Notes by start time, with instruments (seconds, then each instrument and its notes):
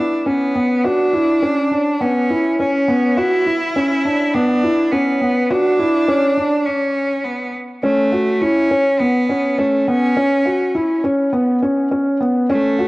Already playing: cello D4, felt piano E4
0.26 cello B3, felt piano C#4
0.55 felt piano B3
0.84 cello D4, felt piano F#4
1.13 felt piano E4
1.42 felt piano C#4
1.71 felt piano D4
2.01 felt piano B3, cello C#4
2.30 felt piano E4
2.59 cello C#4, felt piano C#4
2.88 felt piano B3
3.17 cello E4, felt piano F#4
3.46 felt piano E4
3.76 felt piano C#4
4.05 felt piano D4
4.34 felt piano B3, cello D4
4.63 felt piano E4
4.92 cello B3, felt piano C#4
5.21 felt piano B3
5.50 cello D4, felt piano F#4
5.79 felt piano E4
6.08 felt piano C#4
6.38 felt piano D4
6.66 cello C#4
7.24 cello B3
7.83 cello A3, felt piano C#4
8.12 felt piano F#4
8.41 cello C#4, felt piano E4
8.71 felt piano C#4
8.99 cello B3, felt piano B3
9.29 felt piano C#4
9.59 cello A3, felt piano C#4
9.88 felt piano B3, cello C#4
10.17 felt piano C#4
10.46 felt piano F#4
10.75 felt piano E4
11.04 felt piano C#4
11.33 felt piano B3
11.62 felt piano C#4
11.91 felt piano C#4
12.21 felt piano B3
12.50 cello A3, felt piano C#4
12.79 felt piano F#4